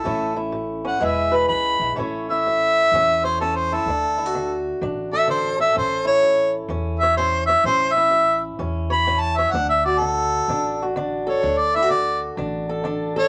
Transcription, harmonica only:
Already playing: A4
0.87 F#5
1.05 E5
1.36 B5
1.49 B5
2.31 E5
3.24 C5
3.41 A4
3.56 C5
3.74 A4
5.13 E5
5.30 C5
5.61 E5
5.78 C5
6.07 C#5
7.00 E5
7.17 C5
7.46 E5
7.66 C5
7.93 E5
8.92 B5
9.21 A5
9.38 E5
9.52 F#5
9.69 E5
9.85 D5
10.00 A4
11.29 C#5
11.58 D5
11.76 E5
11.91 D5
13.19 C#5

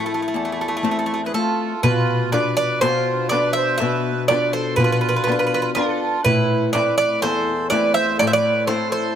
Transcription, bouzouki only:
0.06 A3
0.14 A3
0.22 A3
0.28 A3
0.36 A3
0.45 A3
0.52 A3
0.61 A3
0.68 A3
0.77 A3
0.84 A3
0.91 A3
0.99 A3
1.06 A3
1.14 A3
1.26 B4
1.34 A4
1.83 B4
2.32 D5
2.57 D5
2.81 C5
3.29 D5
3.53 E5
3.78 E5
4.28 D5
4.53 C5
4.76 B4
4.84 B4
4.92 B4
5.01 B4
5.09 B4
5.16 B4
5.24 B4
5.32 B4
5.39 B4
5.47 B4
5.54 B4
5.62 B4
5.75 A4
6.24 B4
6.73 D5
6.98 D5
7.22 C5
7.70 D5
7.94 E5
8.19 D5
8.27 E5
8.33 D5
8.67 C5
8.92 C5

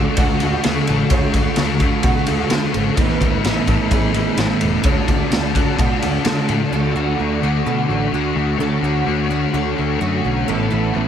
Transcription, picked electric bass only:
0.17 D2
0.42 D2
0.65 D2
0.89 A1
1.10 D2
1.33 D2
1.58 D2
2.03 B2
2.28 D2
2.52 D3
2.75 G#1
2.97 A1
3.20 D2
3.44 A1
3.67 A1
3.91 A1
4.15 A1
4.37 A1
4.63 E1
4.84 D2
5.08 D2
5.34 D2
5.79 B2
6.03 D2
6.25 D3
6.49 A2
6.72 D2
6.95 D2
7.20 D2
7.42 D2
7.66 B2
7.89 A1
8.12 D2
8.35 D2
8.58 D2
8.82 D2
9.07 D2
9.54 D2
9.79 D2
10.01 F#2
10.25 B1
10.48 A1
10.72 A1
10.95 A1

